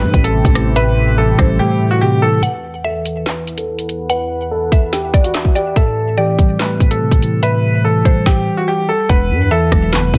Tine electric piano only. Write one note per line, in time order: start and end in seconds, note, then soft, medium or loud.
0.00 0.12 A2 medium
0.00 0.54 E3 medium
0.00 0.76 G3 medium
0.00 0.97 A3 loud
0.14 0.75 A2 medium
0.34 1.39 C3 medium
0.55 1.17 E3 medium
0.76 1.79 A2 medium
1.18 2.21 E3 medium
1.39 2.43 G3 medium
1.59 2.43 A3 loud
1.80 2.43 A2 medium
2.01 2.43 C3 medium
2.22 2.43 E3 medium
5.76 6.79 A2 medium
6.18 7.21 E3 medium
6.39 7.43 G3 medium
6.59 7.64 A3 loud
6.80 7.41 A2 medium
7.01 8.05 C3 medium
7.22 7.83 E3 medium
7.43 8.47 A2 medium
7.84 8.89 E3 medium
8.05 9.09 G3 medium
9.09 10.13 E2 loud
9.51 10.18 E3 medium
9.72 10.18 F#3 medium
9.93 10.18 B3 loud
10.14 10.18 E2 medium